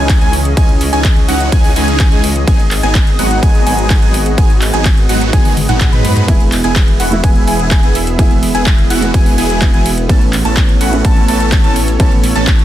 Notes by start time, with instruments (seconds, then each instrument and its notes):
Already playing: detuned saw bass C#2, supersaw synth E3 G#3 C#4 D#4 G#4, analog synth pad E3 C#4 G#4 D#5, digital synth lead G#5
0.09 kick, clap, closed hi-hat, ride
0.21 detuned saw bass C#2, supersaw synth E3 G#3 C#4 D#4 G#4, digital synth lead G#5, closed hi-hat
0.33 open hi-hat
0.45 closed hi-hat
0.57 detuned saw bass C#2, supersaw synth E3 G#3 C#4 D#4 G#4, digital synth lead G#5, kick, closed hi-hat, ride
0.69 closed hi-hat
0.81 open hi-hat
0.93 detuned saw bass C#2, supersaw synth E3 G#3 C#4 D#4 G#4, digital synth lead G#5, closed hi-hat
1.04 kick, clap, closed hi-hat, ride
1.17 closed hi-hat
1.28 detuned saw bass C#2, supersaw synth E3 G#3 C#4 D#4 F#4, digital synth lead F#5, open hi-hat
1.40 closed hi-hat
1.52 detuned saw bass C#2, supersaw synth E3 G#3 C#4 D#4 G#4, digital synth lead G#5, kick, closed hi-hat, ride
1.64 open hi-hat
1.76 detuned saw bass C#2, supersaw synth E3 G#3 C#4 D#4 G#4, digital synth lead G#5, open hi-hat
1.88 closed hi-hat
2.00 kick, clap, closed hi-hat, ride
2.12 detuned saw bass C#2, supersaw synth E3 G#3 C#4 D#4 G#4, digital synth lead G#5, closed hi-hat
2.24 open hi-hat
2.36 closed hi-hat
2.47 detuned saw bass G#1, supersaw synth F#3 G#3 B3 D#4 G#4, analog synth pad B3 F#4, digital synth lead G#5, kick, closed hi-hat, ride
2.60 closed hi-hat
2.71 clap, open hi-hat
2.83 detuned saw bass G#1, supersaw synth F#3 G#3 B3 D#4 G#4, digital synth lead G#5, closed hi-hat
2.95 kick, clap, closed hi-hat, ride
3.07 closed hi-hat
3.19 detuned saw bass G#1, supersaw synth F#3 G#3 B3 D#4 F#4, digital synth lead F#5, open hi-hat
3.31 closed hi-hat
3.43 detuned saw bass G#1, supersaw synth F#3 G#3 B3 D#4 G#4, digital synth lead G#5, kick, closed hi-hat, ride
3.55 closed hi-hat
3.66 detuned saw bass G#1, supersaw synth F#3 G#3 B3 D#4 G#4, digital synth lead G#5, open hi-hat
3.79 closed hi-hat
3.90 kick, clap, closed hi-hat, ride
4.02 detuned saw bass G#1, supersaw synth F#3 G#3 B3 D#4 G#4, digital synth lead G#5, closed hi-hat
4.14 open hi-hat
4.26 closed hi-hat
4.38 detuned saw bass G#1, supersaw synth F#3 G#3 B3 D#4 G#4, digital synth lead G#5, kick, closed hi-hat, ride
4.50 closed hi-hat
4.62 clap, open hi-hat
4.73 detuned saw bass G#1, supersaw synth F#3 G#3 B3 D#4 G#4, digital synth lead G#5, closed hi-hat
4.85 kick, clap, closed hi-hat, ride
4.98 closed hi-hat
5.09 detuned saw bass G#1, supersaw synth F#3 G#3 B3 D#4 F#4, digital synth lead F#5, open hi-hat
5.21 closed hi-hat
5.33 detuned saw bass G#1, supersaw synth F#3 G#3 B3 D#4 G#4, digital synth lead G#5, kick, closed hi-hat, high tom, ride
5.45 open hi-hat, high tom
5.57 open hi-hat, high tom
5.69 detuned saw bass G#1, supersaw synth F#3 G#3 B3 D#4 F#4, digital synth lead F#5, closed hi-hat, mid tom
5.81 kick, clap, closed hi-hat, mid tom, ride
5.93 detuned saw bass G#2, supersaw synth F#3 G#3 B3 D#4 B4, digital synth lead B5, closed hi-hat, mid tom
6.05 mid tom, open hi-hat
6.17 closed hi-hat, mid tom
6.27 detuned saw bass E1, felt piano E3 G#3 B3 E4, analog synth pad E3 G#4 E5, supersaw synth B3 E4 G#4, digital synth lead G#5, kick, closed hi-hat, ride
6.40 closed hi-hat
6.52 clap, open hi-hat
6.64 detuned saw bass E1, supersaw synth B3 E4 G#4, digital synth lead G#5, closed hi-hat
6.76 kick, clap, closed hi-hat, ride
6.88 closed hi-hat
7.00 detuned saw bass E1, supersaw synth B3 E4 F#4, digital synth lead F#5, open hi-hat
7.11 felt piano E3 G#3 B3 E4, closed hi-hat
7.24 detuned saw bass E1, supersaw synth B3 E4 G#4, digital synth lead G#5, kick, closed hi-hat, ride
7.36 closed hi-hat
7.47 detuned saw bass E1, supersaw synth B3 E4 G#4, digital synth lead G#5, open hi-hat
7.59 closed hi-hat
7.71 kick, clap, closed hi-hat, ride
7.83 detuned saw bass E1, supersaw synth B3 E4 G#4, digital synth lead G#5, closed hi-hat
7.95 open hi-hat
8.07 closed hi-hat
8.18 detuned saw bass E1, felt piano E3 G#3 B3 E4, supersaw synth B3 E4 G#4, digital synth lead G#5, kick, closed hi-hat, ride
8.31 closed hi-hat
8.43 open hi-hat
8.54 detuned saw bass E1, supersaw synth B3 E4 G#4, digital synth lead G#5, closed hi-hat
8.66 kick, clap, closed hi-hat, ride
8.78 closed hi-hat
8.90 detuned saw bass E1, supersaw synth B3 E4 F#4, digital synth lead F#5, open hi-hat
9.01 felt piano E3 G#3 B3 F#4, closed hi-hat
9.14 detuned saw bass E1, supersaw synth B3 E4 G#4, digital synth lead G#5, kick, closed hi-hat, ride
9.26 open hi-hat
9.38 detuned saw bass E1, supersaw synth B3 E4 G#4, digital synth lead G#5, open hi-hat
9.50 closed hi-hat
9.61 felt piano E3 G#3 B3 E4, kick, clap, closed hi-hat, ride
9.74 detuned saw bass E1, supersaw synth B3 E4 G#4, digital synth lead G#5, closed hi-hat
9.86 open hi-hat
9.98 closed hi-hat
10.08 detuned saw bass A1, felt piano E3 A3 B3 C#4, supersaw synth E3 A3 B3 C#4 A4, analog synth pad A4 C#5, digital synth lead A5, kick, closed hi-hat, ride
10.21 closed hi-hat
10.33 clap, open hi-hat
10.45 detuned saw bass A1, supersaw synth E3 A3 B3 C#4 A4, digital synth lead A5, closed hi-hat
10.57 kick, clap, closed hi-hat, ride
10.69 closed hi-hat
10.81 detuned saw bass A1, supersaw synth E3 A3 B3 C#4 F#4, digital synth lead F#5, open hi-hat
10.92 felt piano E3 A3 B3 C#4, closed hi-hat
11.05 detuned saw bass A1, supersaw synth E3 A3 B3 C#4 A4, digital synth lead A5, kick, closed hi-hat, ride
11.17 closed hi-hat
11.28 detuned saw bass A1, supersaw synth E3 A3 B3 C#4 A4, digital synth lead A5, open hi-hat
11.40 closed hi-hat
11.52 kick, clap, closed hi-hat, ride
11.64 detuned saw bass A1, supersaw synth E3 A3 B3 C#4 A4, digital synth lead A5, closed hi-hat
11.76 open hi-hat
11.88 closed hi-hat
11.99 detuned saw bass A1, felt piano E3 A3 B3 C#4, supersaw synth E3 A3 B3 C#4 A4, digital synth lead A5, kick, closed hi-hat, ride
12.12 closed hi-hat
12.24 open hi-hat
12.35 detuned saw bass A1, supersaw synth E3 A3 B3 C#4 A4, digital synth lead A5, closed hi-hat
12.47 kick, clap, closed hi-hat, ride
12.59 closed hi-hat